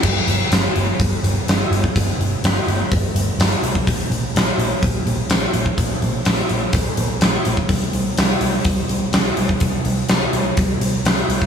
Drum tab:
CC |x---------------|----------------|----------------|----------------|
HH |--o-o-o-o-o-o-o-|o-o-o-o-o-o-o-o-|o-o-o-o-o-o-o-o-|o-o-o-o-o-o-o-o-|
SD |----o-------o---|----o-------o---|----o-------o---|----o-------o---|
BD |o-------o------o|o-------o------o|o-------o------o|o-------o------o|

CC |----------------|----------------|
HH |o-o-o-o-o-o-o-o-|o-o-o-o-o-o-o-o-|
SD |----o-------o---|----o-------o---|
BD |o-------o------o|o-------o------o|